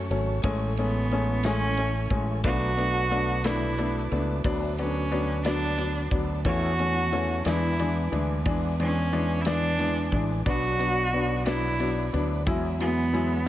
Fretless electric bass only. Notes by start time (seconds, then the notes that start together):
Already playing: F#2
0.10 G#1
0.44 A1
2.10 A1
2.44 B1
4.11 C#2
4.44 D2
6.11 D2
6.45 E2
7.45 E2
8.12 D2
8.46 E2
10.12 A1
10.46 B1
12.14 D2
12.47 E2